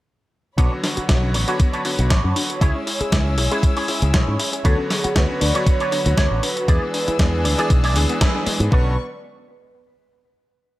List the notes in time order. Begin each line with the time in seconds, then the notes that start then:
0.57 B1 D3 F#3 B3 D4 F#4 B4 C#5 B5, kick, closed hi-hat
0.72 C#4
0.83 D4, muted clean electric guitar stroke, snare, open hi-hat
0.97 F#4, muted fingered electric bass stroke, closed hi-hat
1.09 B1 D3 F#3 B3 F#4 C#5, kick, snare, closed hi-hat
1.22 C#4
1.34 A1 D4, muted clean electric guitar stroke, open hi-hat
1.48 D3 F#3 B3 D4 F#4 B4 C#5, closed hi-hat
1.60 B3, kick, closed hi-hat
1.73 C#4 D4 B4 C#5, closed hi-hat
1.85 D3 F#3 B3 D4 F#4 C#5, open hi-hat
1.98 B1 F#4, muted clean electric guitar stroke, closed hi-hat
2.10 A1 B3 D4 B4 C#5, kick, snare, closed hi-hat
2.24 F#2 C#4
2.36 D4, open hi-hat
2.50 F#4, closed hi-hat
2.61 C#2 G#3 C#4 E4 G#4 C#5 G#5 E6, kick, closed hi-hat
2.75 C#4
2.87 E4, muted clean electric guitar stroke, open hi-hat
3.00 G#4, muted fingered electric bass stroke, closed hi-hat
3.12 C#2 G#3 C#4 E4, kick, snare, closed hi-hat
3.26 C#4
3.37 B1 E4, muted clean electric guitar stroke, open hi-hat
3.51 G#3 C#4 E4 G#4 B4, closed hi-hat
3.63 G#3, kick, closed hi-hat
3.76 C#4 E4 G#4 C#5, open hi-hat
3.88 G#3 C#4 E4, open hi-hat
4.02 C#2 G#4, muted clean electric guitar stroke, closed hi-hat
4.14 B1 G#3 E4 G#4 C#5, kick, snare, closed hi-hat
4.28 G#2 C#4
4.40 E4, open hi-hat
4.53 G#4, closed hi-hat
4.64 D2 D3 F#3 B3 D4 F#4 A4 B4 C#5 B5, kick, closed hi-hat
4.78 C#4
4.90 D4 G#4, muted clean electric guitar stroke, snare, open hi-hat
5.04 F#4, muted fingered electric bass stroke, closed hi-hat
5.15 D2 D3 F#3 B3 F#4 B4 C#5, kick, snare, closed hi-hat
5.29 C#4
5.41 D2 D4 D5, muted clean electric guitar stroke, open hi-hat
5.54 D3 F#3 B3 D4 F#4 B4 C#5, closed hi-hat
5.67 B3 C#5, kick, closed hi-hat
5.80 C#4 D4 B4 C#5, closed hi-hat
5.91 D3 F#3 B3 D4 F#4 C#5, open hi-hat
6.05 D2 F#4, muted clean electric guitar stroke, closed hi-hat
6.17 D2 B3 D4 B4 C#5, kick, snare, closed hi-hat
6.31 A1 C#4
6.43 D4 B4, open hi-hat
6.56 F#4, closed hi-hat
6.68 E2 E3 G#3 B3 D4 E4 G#4 D5 G#5 E6, kick, closed hi-hat
6.82 B3
6.94 D4, muted clean electric guitar stroke, open hi-hat
7.08 E4, muted fingered electric bass stroke, closed hi-hat
7.19 E2 E3 G#3 B3 D4 G#4, kick, snare, closed hi-hat
7.33 B3
7.44 D2 D4, muted clean electric guitar stroke, open hi-hat
7.58 E3 G#3 B3 D4 E4 G#4 D5, closed hi-hat
7.70 B1 G#3, kick, closed hi-hat
7.84 B3 E4 G#4 D5, open hi-hat
7.96 D2 E3 G#3 B3 D4 G#4, open hi-hat
8.09 B3, muted clean electric guitar stroke, closed hi-hat
8.21 D4 E4 G#4 B4, kick, snare, closed hi-hat
8.35 E3 G#3 B3 D4 G#4
8.46 G#3, muted fingered electric bass stroke, open hi-hat
8.60 G#2 B3, closed hi-hat
8.71 B1 D3 F#3 B3 C#4 D4 F#4 B4 C#5 D5 C#6, kick